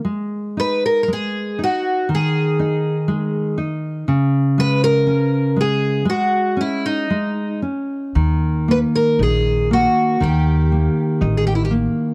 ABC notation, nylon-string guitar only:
X:1
M:2/4
L:1/8
Q:1/4=60
K:C#dor
V:1 name="Nylon-string guitar"
G, D G, D | D, D G, D | C, G, C G, | G, C G, C |
D, A, D A, | D, A, D A, |]